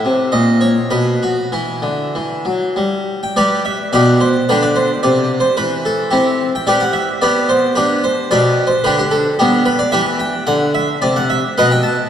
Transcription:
Already playing: E5
0.05 C3
0.32 A#2 D#5
0.61 C#5
0.90 B2 B4
1.23 F#4
1.52 E3 E4
1.82 D3
2.15 E3
2.45 F#3
2.76 G3
3.23 G5
3.36 G3 G4 B4 D5
3.65 E5
3.93 B2 G4 B4 D5
4.21 C5
4.49 D3 D4 G4 B4
4.62 D5
4.76 C5
5.03 C3 D5
5.40 C5
5.57 E3 B4
5.85 A4
6.11 C4 E4 G4
6.55 G5
6.67 G3 G4 B4 D5
6.80 F#5
6.93 E5
7.22 B3 G4 B4 D5
7.49 C5
7.75 D4 G4 B4
8.04 C5
8.31 B2 G4 B4 D5
8.67 C5
8.84 D3 D4 G4 B4
8.99 G4
9.11 A4
9.39 G3 B3 D4 G4
9.65 B4
9.79 D5
9.92 E3 G4 B4 E5
10.19 G5
10.47 D3 F#5
10.74 E5
11.02 C3 D5
11.16 F#5
11.30 E5
11.58 B2 B4 D#5 F#5
11.71 G5
11.83 A5

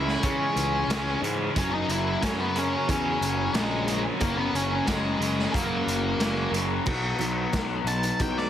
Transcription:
Already playing: C#2 C#3 E3 G#3 C#4 E4 E5
0.08 snare
0.22 C#3 E3 G#3 C#4 C#5, kick, closed hi-hat
0.26 C#4
0.56 C#2, closed hi-hat
0.88 C#2 C#3 E3 G#3 C#4, snare, closed hi-hat
1.21 G#2 C#3 E3 G#3 C#4, closed hi-hat
1.55 F#1 F#2 C#3 F#3 A#3 C#4 C#5, kick, closed hi-hat
1.73 D#4 D#5
1.89 F#1 E4 E5, closed hi-hat
2.22 F#2 C#3 F#3 A#3 C#4 C#5, kick, snare, closed hi-hat
2.40 B3 B4
2.56 F#2 C#3 F#3 A#3 C#4 C#5, closed hi-hat
2.87 E2 F#2 C#3 F#3 A#3 C#4 C#5, kick, closed hi-hat
3.21 F#1, closed hi-hat
3.54 A#1 F#2 C#3 F#3 G#3 A#3 C#4 G#4, snare, closed hi-hat
3.87 F#2 C#3 F#3 A#3 C#4, closed hi-hat
4.20 F#1 F#2 C#3 F#3 A#3 C#4 A#4, kick, closed hi-hat
4.37 B3 B4
4.53 F#1 C#4 C#5, closed hi-hat
4.86 F#1 F#2 C#3 F#3 G#3 A#3 C#4 G#4, kick, snare, closed hi-hat
5.18 F#1 F#2 C#3 F#3 A#3 C#4, closed hi-hat
5.39 snare
5.53 F#2 C#3 F#3 A#3 C#4 A#4, kick, closed hi-hat
5.87 F#1, closed hi-hat
6.18 F#1 F#2 C#3 F#3 A#3 C#4, snare, closed hi-hat
6.51 F#1 F#2 C#3 F#3 A#3 C#4, closed hi-hat
6.86 B1 B2 F#3 B3, kick, crash
7.19 B1 F#3, closed hi-hat
7.53 B1 B3, kick, snare, closed hi-hat
7.84 B1 D#4 A5, closed hi-hat
8.03 closed hi-hat
8.20 B1 F#3 G5, kick, closed hi-hat
8.37 D5, snare

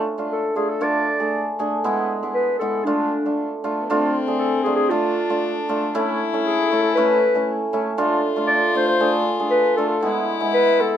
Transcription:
0.18 A3 D4 F4
0.32 A4
0.55 A3 D4 F4 G#4
0.69 A4
0.81 A3 D4 F4 D5
1.20 A3 D4 G#4
1.59 A3 D4 G#4
1.84 G#3 B3 E4
2.23 G#3 B3 E4
2.34 B4
2.59 G#3 B3 E4 A4
2.85 A3 D4 F4
3.26 A3 D4 F4
3.64 A3 D4 F4
3.81 B3
3.88 A3 C4 D4 F4
4.27 A3 D4 G#4
4.39 A4
4.63 A3 D4 F4 G#4
4.76 G#4
4.89 A3 D4 F4
5.29 A3 D4 F4
5.69 A3 D4 F4
5.94 A3 C#4 E4
6.33 A3 C#4 E4
6.46 G#4
6.70 A3 C#4 E4 A4
6.82 A4
6.95 A3 C#4 E4 B4
7.35 A3 C#4 E4
7.73 A3 C#4 E4
7.98 A3 D4 F4
8.36 A3 D4 F4
8.47 D5
8.75 A3 D4 F4 C5
8.88 C5
9.00 A3 D4 G#4
9.39 A3 D4 G#4
9.50 B4
9.76 A3 D4 F4 A4
9.89 A4
10.02 G#3 B3 E4
10.40 G#3 B3 E4
10.53 B4
10.79 G#3 B3 E4 A4

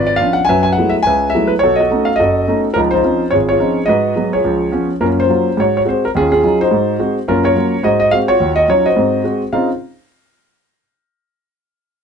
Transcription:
Already playing: G#1 F4 B4
0.07 D5
0.16 F3 B3 F5
0.21 C#4 D4
0.33 F#5
0.45 G#5
0.49 F#2 F#3 B4 E5
0.63 G#5
0.73 F#5
0.78 F#3 G#3 A3 B3 E4
0.89 E5
1.03 G#5
1.07 C#2 B4 E5
1.30 E5
1.34 F#3 G#3 A3 B3 E4
1.47 B4
1.59 C#5
1.63 B1 F#4 A4
1.76 D#5
1.80 F#4 A4
1.91 A3 B3 C#4 D#4
2.05 F5
2.16 A4 D#5
2.20 F#1 F#4
2.48 A3 B3 C#4 D#4
2.74 C#2 F3 F4 A#4
2.78 D#4
2.91 D#4 F4 C5
3.04 F3 C4 C#4 D#4
3.31 G#1 F4 G#4 C#5
3.49 F4 G#4 C#5
3.59 F3 C4 C#4 D#4
3.86 G#2 F#4 B4 D#5
4.16 F#3 G#3 B3
4.33 F4 G#4 C#5
4.44 C#2 F3
4.72 F3 B3 C#4
5.01 F#2 A#3 C#4 F4 A#4
5.20 F4 C5
5.29 F#3 A#3 F4
5.57 G#2 F#4 C#5
5.77 C#5
5.85 G#3 C4 F#4 C5
6.05 A#4
6.15 D#2 C#4 F4 G#4
6.32 C#4 F4 G#4
6.43 F#3 C#4 D#4 F4
6.61 D#4 F#4 C5
6.71 G#2
6.99 G#3 C4 F#4
7.28 F#2 A#3 C#4 F4 A#4
7.44 F4 A#4 C#5
7.55 F#3 A#3 F4
7.83 G#2 F#4 C5 D#5
8.00 D#5
8.11 G#3 C4 F#4 F5
8.28 F4 F#4 C#5
8.40 D#2
8.56 D#5
8.68 F#3 C#4 D#4 F4 C#5
8.86 F#4 C5 D#5
8.96 G#2 C4
9.24 G#3 C4 F#4
9.53 C#3 C4 D#4 F4 F5

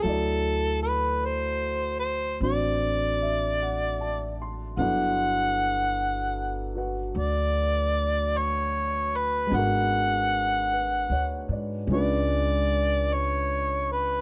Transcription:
0.03 D2 F#3 A3 E4 A4
0.08 D5
0.82 B4
1.25 C5
1.99 C5
2.40 A1 C4 D4 F#4 D5
2.45 C5
3.22 E5
3.62 F#5
4.01 A5
4.42 C6
4.77 G1 F#3 B3 D4 E4 A4 F#5
6.75 F#4 B4 F#5
7.15 D2 D5
8.37 C#5
9.16 B4
9.47 G#3 B3
9.51 G#1 D4 F#4
9.56 A#4 F#5
10.73 B4
11.09 D2 C#5
11.49 G#2 D5
11.87 C#2 G#3 C#4
11.92 D4 F4 B4 D5
13.13 C#5
13.92 B4

